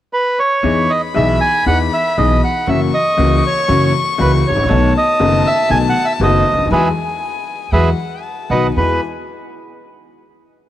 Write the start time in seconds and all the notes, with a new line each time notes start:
0.13 B4
0.39 C#5
0.63 E2 E3 B3 D#4 G#4 B5
0.90 D#5
1.14 B1 B2 E3 B3 D#4 G#4 E5
1.41 G#5
1.66 E2 E3 B3 D#4 G#4 F#5
1.93 E5
2.18 B1 B2 E3 B3 D#4 G#4 D#5
2.44 F#5
2.66 F#1 F#2 E3 F#3 A#3 C#4 F#4 E5 C#6
2.94 D#5
3.17 C#2 C#3 E3 A#3 C#4 F#4
3.37 D#5
3.47 C#5
3.68 F#1 F#2 E3 F#3 A#3 C#4 F#4
4.18 C#2 C#3 E3 A#3 C#4 F#4 B4
4.47 G#1 C#5
4.56 A1
4.63 A#1
4.68 B1 B2 D#3 A3 B3 F#4 A5
4.98 D#5
5.20 F#1 F#2 D#3 A3 B3 F#4
5.47 E5
5.69 B1 B2 D#3 A3 B3 F#4 G#5
5.89 F#5
6.05 E5
6.20 F#1 F#2 D#3 A3 B3 F#4 D#5
6.53 C#2
6.58 D2
6.66 D#2
6.71 E2 E3 F#3 G#3 G#4 B4 E5 G#5
7.72 E2 E3 F#3 G#3 G#4 B4 E5 F#5
8.23 A5
8.50 B1 B2 D#3 F#3 B4 D#5 F#5
8.75 E2 G#3 E4 F#4 B4 G#5